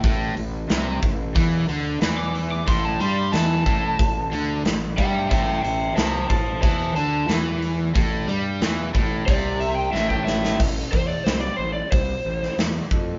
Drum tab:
CC |----------------|----------------|----------------|----------------|
HH |o-o-o-o-o-o-o-o-|o-o-o-o-o-o-o-o-|o-o-o-o-o-o-o-o-|o-o-o-o-o-o-----|
SD |----o-------o---|----o-------o---|----o-------o---|----o-------o-oo|
BD |o-----o-o-------|o-----o-o-----o-|o-----o-o-------|o-----o-o----o--|

CC |x---------------|
HH |----o---o---o---|
SD |----o------oo---|
BD |o-o-----o-----o-|